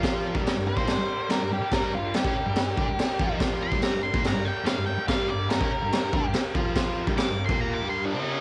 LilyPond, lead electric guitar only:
\new Staff \with { instrumentName = "Lead electric guitar" } { \time 4/4 \key g \minor \tempo 4 = 143 << { r4. c''4. bes'8 g'8 | bes'8 f'8 g'2. | r8 c'''8 bes''8 c'''8 bes''8 g''8 f''8 g''8 | f''8 d''8 bes'2 r4 |
r4 \tuplet 3/2 { d'''4 c'''8 bes''8 d'''8 c'''8 bes''8 bes''4 } | } \\ { r1 | r1 | r1 | r1 |
r2. d'4 | } >> }